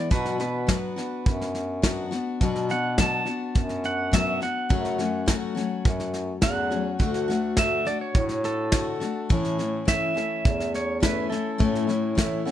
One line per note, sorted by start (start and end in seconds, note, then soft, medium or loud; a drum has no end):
0.00 0.11 E3 soft
0.00 0.11 G#3 soft
0.00 0.10 B3 soft
0.00 0.11 E4 medium
0.00 0.11 D5 medium
0.11 0.39 B2 medium
0.11 0.79 B2 medium
0.11 0.40 F#3 medium
0.11 0.39 B3 medium
0.11 0.38 D4 medium
0.11 0.37 F#4 medium
0.11 0.39 B4 medium
0.11 kick loud
0.11 snare soft
0.26 snare soft
0.38 0.67 B3 soft
0.38 0.68 D4 soft
0.38 0.67 F#4 soft
0.38 1.52 B4 medium
0.38 snare soft
0.67 0.96 F#3 medium
0.67 0.97 B3 medium
0.67 0.97 D4 medium
0.67 0.95 F#4 medium
0.67 kick medium
0.67 snare loud
0.67 hi-hat pedal medium
0.96 1.82 B3 soft
0.96 1.84 D4 soft
0.96 1.85 F#4 medium
0.96 snare soft
1.26 2.15 F#2 medium
1.26 kick loud
1.26 snare soft
1.41 snare soft
1.55 snare soft
1.82 2.12 F#3 medium
1.82 2.12 B3 medium
1.82 2.11 D4 medium
1.82 2.10 F#4 medium
1.82 kick medium
1.82 snare loud
1.82 hi-hat pedal medium
2.11 2.41 B3 medium
2.11 2.41 D4 medium
2.11 2.40 F#4 medium
2.11 snare soft
2.41 3.30 B2 medium
2.41 2.70 B2 medium
2.41 2.70 F#3 medium
2.41 2.70 B3 medium
2.41 2.69 D4 medium
2.41 2.68 F#4 medium
2.41 kick loud
2.41 snare soft
2.56 snare soft
2.69 2.98 B3 soft
2.69 2.98 D4 soft
2.69 2.98 F#4 medium
2.69 2.98 F#5 medium
2.69 snare soft
2.98 3.27 F#3 medium
2.98 3.27 B3 medium
2.98 3.26 D4 medium
2.98 3.24 F#4 medium
2.98 3.83 A5 medium
2.98 kick medium
2.98 snare loud
2.98 hi-hat pedal medium
3.25 4.12 B3 soft
3.25 4.12 D4 soft
3.25 4.14 F#4 medium
3.25 snare soft
3.55 4.44 F#2 medium
3.55 kick loud
3.55 snare soft
3.69 snare soft
3.84 4.13 F#5 medium
3.84 snare soft
4.11 4.41 F#3 medium
4.11 4.42 B3 medium
4.11 4.41 D4 medium
4.11 4.39 F#4 medium
4.11 4.42 E5 medium
4.11 kick medium
4.11 snare loud
4.11 hi-hat pedal medium
4.41 4.70 B3 soft
4.41 4.70 D4 soft
4.41 4.70 F#4 medium
4.41 6.11 F#5 medium
4.41 snare soft
4.69 4.99 F#2 medium
4.69 5.39 F#2 medium
4.69 4.99 C#3 medium
4.69 4.99 F#3 medium
4.69 4.99 A3 medium
4.69 4.98 C#4 medium
4.69 4.97 F#4 medium
4.69 kick loud
4.69 snare soft
4.85 snare soft
4.98 5.25 F#3 soft
4.98 5.26 A3 soft
4.98 5.27 C#4 medium
4.98 5.28 F#4 medium
4.98 snare soft
5.26 5.56 F#3 medium
5.26 5.56 A3 medium
5.26 5.55 C#4 medium
5.26 5.54 F#4 medium
5.26 kick medium
5.26 snare loud
5.26 hi-hat pedal medium
5.55 6.40 F#3 medium
5.55 6.42 A3 medium
5.55 6.42 C#4 medium
5.55 6.42 F#4 medium
5.55 snare soft
5.85 6.34 F#2 medium
5.85 kick loud
5.85 snare soft
6.00 snare soft
6.14 snare soft
6.41 6.91 E2 medium
6.41 6.71 F#3 medium
6.41 6.71 A3 medium
6.41 6.71 C#4 medium
6.41 6.69 F#4 medium
6.41 7.55 F#5 loud
6.41 kick medium
6.41 snare loud
6.41 hi-hat pedal medium
6.70 6.98 F#3 soft
6.70 6.99 A3 soft
6.70 7.00 C#4 medium
6.70 6.99 F#4 medium
6.70 snare soft
6.99 7.89 D2 medium
6.99 7.29 D3 medium
6.99 7.29 A3 medium
6.99 7.29 D4 medium
6.99 7.27 F#4 medium
6.99 kick loud
6.99 snare soft
7.14 snare soft
7.28 7.57 A3 medium
7.28 7.58 D4 medium
7.28 7.57 F#4 medium
7.28 snare soft
7.57 7.86 D3 medium
7.57 7.87 A3 medium
7.57 7.85 D4 medium
7.57 7.84 F#4 medium
7.57 7.86 E5 medium
7.57 kick medium
7.57 snare loud
7.57 hi-hat pedal medium
7.85 8.73 A3 soft
7.85 8.73 D4 soft
7.85 8.72 F#4 medium
7.85 8.01 D5 medium
7.85 snare soft
8.01 8.43 C#5 medium
8.14 9.04 A2 medium
8.14 kick loud
8.14 snare soft
8.29 snare soft
8.44 9.56 A4 loud
8.44 snare soft
8.72 9.02 D3 medium
8.72 9.02 A3 medium
8.72 9.01 D4 medium
8.72 8.99 F#4 medium
8.72 kick medium
8.72 snare loud
8.72 hi-hat pedal medium
9.00 9.29 A3 soft
9.00 9.30 D4 medium
9.00 9.30 F#4 medium
9.00 snare soft
9.29 9.59 A2 medium
9.29 9.98 A2 medium
9.29 9.59 E3 medium
9.29 9.59 A3 medium
9.29 9.59 C#4 medium
9.29 9.57 E4 loud
9.29 kick loud
9.29 snare soft
9.45 snare soft
9.58 9.86 A3 soft
9.58 9.86 C#4 soft
9.58 9.87 E4 medium
9.58 snare soft
9.85 10.15 E3 medium
9.85 10.16 A3 medium
9.85 10.14 C#4 medium
9.85 10.13 E4 medium
9.85 10.10 A4 medium
9.85 10.10 C#5 medium
9.85 10.10 E5 medium
9.85 10.72 E5 loud
9.85 kick medium
9.85 snare loud
9.85 hi-hat pedal medium
10.14 11.00 A3 soft
10.14 11.01 C#4 medium
10.14 11.03 E4 medium
10.14 10.61 A4 medium
10.14 10.61 C#5 medium
10.14 10.61 E5 medium
10.14 snare soft
10.45 11.34 E2 medium
10.45 kick loud
10.45 snare soft
10.60 snare soft
10.74 11.02 C#5 medium
10.74 snare soft
11.00 11.30 E3 medium
11.00 11.31 A3 medium
11.00 11.29 C#4 medium
11.00 11.28 E4 medium
11.00 11.47 A4 medium
11.00 11.31 B4 medium
11.00 11.47 C#5 medium
11.00 11.47 E5 medium
11.00 kick medium
11.00 snare loud
11.00 hi-hat pedal medium
11.30 11.58 A3 medium
11.30 11.58 C#4 soft
11.30 11.59 E4 medium
11.30 11.86 A4 medium
11.30 snare soft
11.58 11.88 A2 medium
11.58 12.49 A2 medium
11.58 11.88 E3 medium
11.58 11.89 A3 medium
11.58 11.87 C#4 medium
11.58 11.86 E4 medium
11.58 kick loud
11.58 snare soft
11.75 snare soft
11.87 12.16 A3 soft
11.87 12.16 C#4 soft
11.87 12.17 E4 medium
11.87 snare soft
12.15 12.45 E3 medium
12.15 12.46 A3 medium
12.15 12.45 C#4 medium
12.15 12.44 E4 medium
12.15 12.40 A4 medium
12.15 12.40 C#5 medium
12.15 12.40 E5 medium
12.15 kick medium
12.15 snare loud
12.15 hi-hat pedal medium
12.45 12.51 A3 soft
12.45 12.51 C#4 medium
12.45 12.51 E4 medium
12.45 12.51 A4 medium
12.45 12.51 C#5 medium
12.45 12.51 F#5 medium
12.45 snare soft